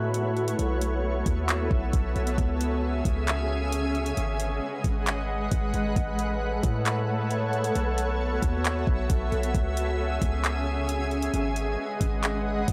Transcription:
Already playing: 808-style bass A2, ambient pad A3 E4 F#4 B4 C#5
0.14 closed hi-hat
0.37 closed hi-hat
0.48 closed hi-hat
0.59 808-style bass B1, ambient pad B3 A4 E5, closed hi-hat
0.81 closed hi-hat
1.26 808-style bass D#2, kick, closed hi-hat
1.49 clap, closed hi-hat
1.71 808-style bass B1, kick
1.93 808-style bass B1, kick, closed hi-hat
2.16 808-style bass B1, closed hi-hat
2.27 closed hi-hat
2.38 808-style bass C#2, ambient pad C#3 C#4 G#4 E5 G#5, kick, closed hi-hat
2.61 closed hi-hat
3.05 808-style bass C#2, kick, closed hi-hat
3.28 clap, closed hi-hat
3.72 closed hi-hat
3.95 closed hi-hat
4.06 closed hi-hat
4.17 808-style bass G#1, ambient pad G#3 G#4 B4 D#5 F#5, closed hi-hat
4.40 closed hi-hat
4.84 808-style bass G#1, kick, closed hi-hat
5.07 clap, closed hi-hat
5.51 808-style bass G#1, kick, closed hi-hat
5.74 808-style bass G#1, closed hi-hat
5.96 808-style bass A1, ambient pad A3 A4 C#5, kick, closed hi-hat
6.19 closed hi-hat
6.63 808-style bass A2, kick, closed hi-hat
6.86 clap, closed hi-hat
7.31 closed hi-hat
7.53 closed hi-hat
7.64 closed hi-hat
7.75 808-style bass B1, ambient pad B3 F#4 E5, closed hi-hat
7.98 closed hi-hat
8.42 808-style bass D#2, kick, closed hi-hat
8.65 clap, closed hi-hat
8.87 808-style bass B1, kick
9.10 808-style bass B1, kick, closed hi-hat
9.32 808-style bass B1, closed hi-hat
9.43 closed hi-hat
9.55 808-style bass C#2, ambient pad C#3 C#4 G#4 G#5, kick, closed hi-hat
9.77 closed hi-hat
10.22 808-style bass C#2, kick, closed hi-hat
10.44 clap, closed hi-hat
10.89 closed hi-hat
11.11 closed hi-hat
11.22 closed hi-hat
11.34 808-style bass G#1, ambient pad G#3 B4 D#5 F#5, closed hi-hat
11.56 closed hi-hat
12.01 808-style bass G#1, kick, closed hi-hat
12.23 clap, closed hi-hat
12.68 808-style bass G#1, kick, closed hi-hat

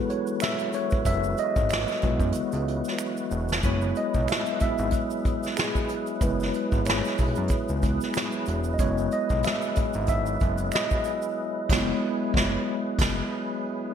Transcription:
Already playing: tonewheel organ E3 F#3 F#4 B4, tine electric piano G#3 B3 E4 G#4 A4 B4
0.10 tine electric piano C#5, closed hi-hat
0.27 shaker
0.40 tine electric piano E5, finger snap, snare, closed hi-hat, shaker
0.59 closed hi-hat, shaker
0.73 tine electric piano C#5, closed hi-hat, shaker
0.90 kick, shaker
1.05 analog synth bass F#1, tine electric piano E5, kick, closed hi-hat, shaker
1.24 shaker
1.37 tine electric piano D#5, closed hi-hat, shaker
1.56 analog synth bass G#1, kick, shaker
1.69 finger snap, closed hi-hat, shaker
1.73 snare
1.88 snare, shaker
2.02 analog synth bass B1, tine electric piano G#3 B3 E4, kick, closed hi-hat
2.20 analog synth bass F#2, kick, shaker
2.32 analog synth bass C#2, closed hi-hat, shaker
2.52 analog synth bass C#2, closed hi-hat, shaker
2.68 closed hi-hat
2.85 snare, shaker
2.99 finger snap, shaker
3.17 shaker
3.31 analog synth bass E1, shaker
3.48 snare, shaker
3.63 analog synth bass F#1, tonewheel organ F#3 E4 G#4 B4, tine electric piano G#3 B3 E4 C#5, kick, closed hi-hat, shaker
3.81 shaker
3.95 tine electric piano D#5, closed hi-hat, shaker
4.14 analog synth bass B1, kick, shaker
4.28 tine electric piano E5, finger snap, closed hi-hat, shaker
4.32 snare
4.46 shaker
4.60 analog synth bass G#1, tine electric piano G#3 B3 E4 E5, kick, closed hi-hat, shaker
4.78 analog synth bass G#1, shaker
4.91 kick, closed hi-hat, shaker
5.10 shaker
5.25 kick, closed hi-hat, shaker
5.43 snare, shaker
5.57 tine electric piano G#4, finger snap, snare, closed hi-hat, shaker
5.75 kick, shaker
5.89 closed hi-hat, shaker
6.06 closed hi-hat, shaker
6.21 analog synth bass F#1, tine electric piano G#3 B3 E4 B4, kick, closed hi-hat, shaker
6.40 snare, shaker
6.54 closed hi-hat, shaker
6.72 analog synth bass G#1, kick, shaker
6.85 tine electric piano C#5, finger snap, closed hi-hat, shaker
6.89 snare
7.05 snare, shaker
7.17 analog synth bass B1, kick, open hi-hat, shaker
7.35 analog synth bass F#2, closed hi-hat, shaker
7.48 analog synth bass C#2, kick, closed hi-hat, shaker
7.68 analog synth bass C#2, shaker
7.82 tine electric piano G#3 B3 E4, kick, closed hi-hat, shaker
8.01 snare, shaker
8.14 finger snap, snare, closed hi-hat, shaker
8.32 shaker
8.46 analog synth bass E1, closed hi-hat, shaker
8.64 closed hi-hat, shaker
8.74 tine electric piano D#5
8.79 analog synth bass F#1, tine electric piano G#3 B3 E4 C#5, kick, closed hi-hat, shaker
8.98 shaker
9.12 tine electric piano D#5, closed hi-hat, shaker
9.29 analog synth bass B1, kick, closed hi-hat, shaker
9.43 tine electric piano E5, finger snap, closed hi-hat, shaker
9.47 snare
9.62 shaker
9.75 analog synth bass G#1, kick, closed hi-hat, shaker
9.93 analog synth bass G#1, closed hi-hat, shaker
10.07 tine electric piano E5, kick, closed hi-hat, shaker
10.26 shaker
10.40 analog synth bass F#1, kick, closed hi-hat, shaker
10.58 closed hi-hat, shaker
10.72 tine electric piano D#5, finger snap, snare, closed hi-hat, shaker
10.91 kick, shaker
11.04 closed hi-hat, shaker
11.22 shaker
11.69 analog synth bass F#1, tine electric piano G#3 B3 E4 C#5, kick, snare, crash
12.34 analog synth bass F#1, kick, snare
12.99 analog synth bass F#1, kick, snare, crash

